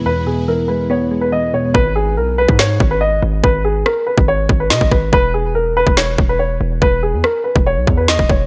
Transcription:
<<
  \new Staff \with { instrumentName = "Grand piano" } { \time 4/4 \key gis \minor \tempo 4 = 142 b'8 gis'8 ais'8 b'8 cis''8. b'16 dis''8 cis''8 | b'8 gis'8 ais'8 b'8 cis''8. b'16 dis''8 r8 | b'8 gis'8 ais'8 b'8 cis''8. b'16 dis''8 b'8 | b'8 gis'8 ais'8 b'8 cis''8. b'16 cis''8 r8 |
b'8 gis'8 ais'8 b'8 cis''8. b'16 dis''8 cis''8 | }
  \new Staff \with { instrumentName = "Ambient pad" } { \time 4/4 \key gis \minor <gis b e' b'>1 | r1 | r1 | r1 |
r1 | }
  \new Staff \with { instrumentName = "Synth keys" } { \clef bass \time 4/4 \key gis \minor <e, b, e gis b>8 b,8 e8 gis8 b8 gis8 e8 b,8 | r1 | r1 | r1 |
r1 | }
  \new Staff \with { instrumentName = "808-style bass" } { \clef bass \time 4/4 \key gis \minor r1 | gis,,4 b,,8. gis,8. gis,,4 gis,,8 | gis,,4 r8. gis,,8. gis,,8 b,16 gis,,16 gis,,8 | e,,4.~ e,,16 e,,8. e,,4 e,,8 |
e,,8. e,16 r8. e,,8 b,,16 e,8. e,,16 e,,8 | }
  \new DrumStaff \with { instrumentName = "Drums" } \drummode { \time 4/4 r4 r4 r4 r4 | bd4 r8. bd16 sn8 bd8 r4 | bd4 ss8. bd16 r8 bd8 sn16 bd16 bd8 | bd4 r8. bd16 sn8 bd8 r4 |
bd4 ss8. bd16 r8 bd8 sn16 bd16 bd8 | }
>>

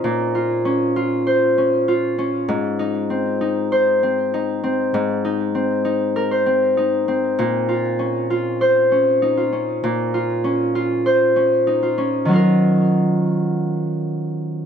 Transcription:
\new Staff \with { instrumentName = "Harp" } { \time 4/4 \key ees \dorian \tempo 4 = 98 <bes, des' f' c''>8 f'8 des'8 f'8 c''8 des'8 f'8 des'8 | aes,8 ees'8 c'8 ees'8 c''8 c'8 ees'8 c'8 | aes,8 ees'8 c'8 ees'8 bes'16 c''16 c'8 ees'8 c'8 | bes,8 f'8 des'8 f'8 c''8 des'8 ees'16 f'16 des'8 |
bes,8 f'8 des'8 f'8 c''8 des'8 ees'16 f'16 des'8 | <ees ges ees' f' bes'>1 | }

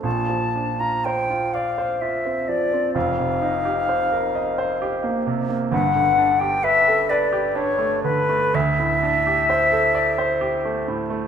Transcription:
<<
  \new Staff \with { instrumentName = "Flute" } { \time 3/4 \key bes \lydian \tempo 4 = 64 a''8. bes''16 g''8 f''8 e''8 d''8 | f''2~ f''8 r8 | ges''8. g''16 e''8 d''8 des''8 b'8 | e''2~ e''8 r8 | }
  \new Staff \with { instrumentName = "Grand piano" } { \time 3/4 \key bes \lydian <bes,, bes,>16 f16 d'16 f'16 c''16 f'16 d''16 c''16 f'16 c'16 f16 c'16 | <f,, f,>16 c16 ees'16 g'16 c''16 bes'16 ees''16 c''16 g'16 bes16 c16 bes16 | <g,, g,>16 d16 d'16 g'16 b'16 a'16 b'16 g'16 d'16 a16 d16 a16 | d,16 a,16 d'16 g'16 c''16 a'16 d''16 c''16 g'16 a16 a,16 a16 | }
>>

